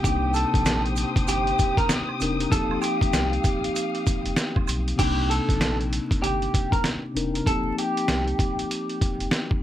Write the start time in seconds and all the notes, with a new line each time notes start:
Already playing: G4 G5
0.01 C2 C3 C4 D4 G4 C5 D#6, kick
0.05 A#3 D#4, closed hi-hat, maracas
0.34 A4, closed hi-hat, maracas
0.54 A#1, kick, closed hi-hat
0.66 snare, closed hi-hat, maracas
0.86 closed hi-hat
0.96 closed hi-hat, maracas
1.16 kick, closed hi-hat
1.28 G1 G4, closed hi-hat, maracas
1.47 closed hi-hat
1.59 kick, closed hi-hat, maracas
1.77 A#4, kick, closed hi-hat
1.89 snare, closed hi-hat, maracas
2.09 high woodblock
2.19 E1 C3 C4 D4 D#4 A#4, closed hi-hat, maracas
2.40 closed hi-hat
2.49 F1 F3 C4 D#4 A4 F5, kick, closed hi-hat, maracas
2.54 A#3 G4
2.71 high woodblock
2.81 G4, closed hi-hat, high woodblock, maracas
3.01 kick, closed hi-hat
3.13 C2, snare, closed hi-hat, maracas
3.33 closed hi-hat
3.44 kick, closed hi-hat, maracas
3.64 closed hi-hat
3.76 closed hi-hat, maracas
3.95 closed hi-hat
4.07 kick, closed hi-hat, maracas
4.26 F1, closed hi-hat
4.36 snare, closed hi-hat, maracas
4.56 kick, high woodblock
4.68 B1, closed hi-hat, high woodblock, maracas
4.88 closed hi-hat
4.96 C2 C3 C4 D4 G4, kick, crash
5.00 A#3 D#4, closed hi-hat
5.30 A4, closed hi-hat
5.49 A#1, kick, closed hi-hat
5.61 snare, closed hi-hat
5.81 closed hi-hat
5.93 closed hi-hat
6.11 kick, closed hi-hat
6.22 G1 G4, closed hi-hat
6.42 closed hi-hat
6.54 kick, closed hi-hat
6.72 A#4, kick, closed hi-hat
6.84 snare, closed hi-hat
7.13 E1 C3 C4 D4 D#4 A#4, closed hi-hat
7.35 closed hi-hat
7.44 F1 F3 C4 D#4 A4, kick, closed hi-hat
7.49 A#3 G4
7.78 G4, closed hi-hat
7.97 closed hi-hat
8.08 C2, snare, closed hi-hat
8.28 closed hi-hat
8.39 kick, closed hi-hat
8.59 closed hi-hat
8.71 closed hi-hat
8.89 closed hi-hat
9.01 kick, closed hi-hat
9.20 F1, closed hi-hat
9.31 snare, closed hi-hat
9.51 kick